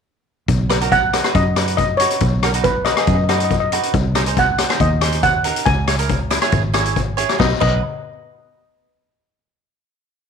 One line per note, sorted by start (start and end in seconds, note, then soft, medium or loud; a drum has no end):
0.48 1.20 B1 medium
0.48 kick loud
0.48 closed hi-hat medium
0.69 0.76 D#4 medium
0.69 0.76 F#4 medium
0.69 0.76 B4 medium
0.69 cross-stick medium
0.69 closed hi-hat medium
0.81 1.00 D#4 medium
0.81 1.00 F#4 medium
0.81 1.01 A#4 medium
0.81 closed hi-hat medium
0.92 1.32 F#5 medium
0.92 kick medium
0.92 closed hi-hat medium
1.13 1.20 D#4 medium
1.13 1.20 F#4 soft
1.13 1.20 B4 medium
1.13 cross-stick medium
1.13 closed hi-hat medium
1.24 1.44 D#4 medium
1.24 1.44 F#4 medium
1.24 1.44 B4 medium
1.24 cross-stick medium
1.24 closed hi-hat medium
1.35 2.06 F#2 medium
1.35 1.76 D#5 medium
1.35 kick loud
1.35 closed hi-hat medium
1.56 1.82 D#4 medium
1.56 1.82 F#4 medium
1.56 1.83 B4 medium
1.56 cross-stick medium
1.56 closed hi-hat medium
1.68 closed hi-hat medium
1.77 2.00 D#5 medium
1.77 kick medium
1.77 closed hi-hat medium
1.97 2.26 D#4 medium
1.97 2.26 F#4 soft
1.97 2.26 B4 medium
1.97 2.65 C#5 medium
1.97 closed hi-hat medium
2.10 closed hi-hat medium
2.20 2.92 B1 medium
2.20 kick loud
2.20 closed hi-hat medium
2.43 2.50 D#4 medium
2.43 2.50 F#4 medium
2.43 2.50 A#4 medium
2.43 cross-stick medium
2.43 closed hi-hat medium
2.54 2.73 D#4 medium
2.54 2.74 F#4 medium
2.54 2.74 B4 medium
2.54 closed hi-hat medium
2.64 2.86 B4 medium
2.64 kick medium
2.64 closed hi-hat medium
2.85 2.93 D#4 medium
2.85 2.93 F#4 medium
2.85 2.93 B4 medium
2.85 2.92 D#5 medium
2.85 cross-stick medium
2.85 closed hi-hat medium
2.93 3.00 D#5 medium
2.93 cross-stick medium
2.93 closed hi-hat soft
2.98 3.17 D#4 medium
2.98 3.17 F#4 medium
2.98 3.17 G#4 medium
2.98 3.07 D#5 medium
3.07 3.79 F#2 medium
3.07 3.14 D#5 soft
3.07 kick medium
3.07 closed hi-hat medium
3.15 3.22 D#5 medium
3.24 3.28 D#5 soft
3.29 3.55 D#4 medium
3.29 3.55 F#4 medium
3.29 3.55 B4 medium
3.29 3.37 D#5 soft
3.29 cross-stick medium
3.29 closed hi-hat medium
3.38 3.43 D#5 soft
3.38 closed hi-hat medium
3.45 3.52 D#5 medium
3.51 3.59 D#5 soft
3.51 kick medium
3.51 closed hi-hat soft
3.60 3.67 D#5 medium
3.72 3.94 D#4 medium
3.72 3.94 F#4 medium
3.72 3.94 B4 medium
3.72 closed hi-hat medium
3.83 closed hi-hat medium
3.94 4.65 C2 medium
3.94 kick loud
3.94 closed hi-hat medium
4.15 4.22 D#4 medium
4.15 4.22 G#4 medium
4.15 4.22 C5 medium
4.15 cross-stick medium
4.15 closed hi-hat medium
4.26 4.46 D#4 medium
4.26 4.46 G#4 medium
4.26 4.46 C5 medium
4.26 closed hi-hat medium
4.37 4.82 F#5 medium
4.37 kick medium
4.37 closed hi-hat medium
4.58 4.66 D#4 medium
4.58 4.66 G#4 medium
4.58 4.66 C5 medium
4.58 cross-stick medium
4.58 closed hi-hat medium
4.69 4.89 D#4 medium
4.69 4.89 G#4 soft
4.69 4.89 C5 medium
4.69 cross-stick medium
4.69 closed hi-hat medium
4.80 5.51 D#2 medium
4.80 5.25 D#5 medium
4.80 kick medium
4.80 closed hi-hat medium
5.01 5.28 D#4 medium
5.01 5.28 G#4 medium
5.01 5.28 C5 medium
5.01 cross-stick medium
5.01 closed hi-hat medium
5.12 closed hi-hat medium
5.23 5.68 F#5 medium
5.23 kick medium
5.23 closed hi-hat medium
5.44 5.67 D#4 medium
5.44 5.66 G#4 soft
5.44 5.67 A#4 medium
5.44 closed hi-hat medium
5.56 closed hi-hat medium
5.66 6.38 C#2 medium
5.66 6.92 G#5 medium
5.66 kick loud
5.66 closed hi-hat medium
5.88 5.95 E4 medium
5.88 5.95 G#4 medium
5.88 5.95 C#5 medium
5.88 cross-stick medium
5.88 closed hi-hat medium
5.99 6.18 E4 medium
5.99 6.19 G#4 medium
5.99 6.19 A#4 medium
5.99 closed hi-hat medium
6.09 kick medium
6.09 closed hi-hat medium
6.31 6.38 E4 medium
6.31 6.38 G#4 medium
6.31 6.38 B4 medium
6.31 cross-stick medium
6.31 closed hi-hat medium
6.42 6.62 E4 medium
6.42 6.62 G#4 medium
6.42 6.62 C#5 medium
6.42 cross-stick medium
6.42 closed hi-hat medium
6.52 7.24 G#1 medium
6.52 kick medium
6.52 closed hi-hat medium
6.74 7.00 E4 medium
6.74 7.00 G#4 medium
6.74 7.00 C#5 medium
6.74 cross-stick medium
6.74 closed hi-hat medium
6.85 closed hi-hat soft
6.96 kick medium
6.96 closed hi-hat medium
7.17 7.38 E4 medium
7.17 7.39 G#4 medium
7.17 7.39 C#5 medium
7.17 closed hi-hat medium
7.29 cross-stick medium
7.29 closed hi-hat soft
7.38 7.52 B1 medium
7.38 7.51 D#4 medium
7.38 7.51 F#4 medium
7.38 7.51 B4 medium
7.38 7.52 D#5 medium
7.38 kick loud
7.38 snare medium
7.60 7.82 B1 medium
7.60 7.81 D#4 medium
7.60 7.81 F#4 medium
7.60 7.81 B4 medium
7.60 7.81 D#5 medium
7.60 kick loud
7.60 crash medium